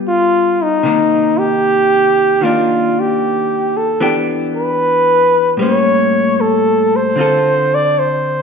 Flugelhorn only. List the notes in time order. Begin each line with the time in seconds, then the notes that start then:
0.08 F4
0.63 D#4
1.39 G4
2.44 F4
3.00 G4
3.77 A4
4.56 B4
5.61 C#5
6.41 A4
6.96 C5
7.75 D5
7.99 C5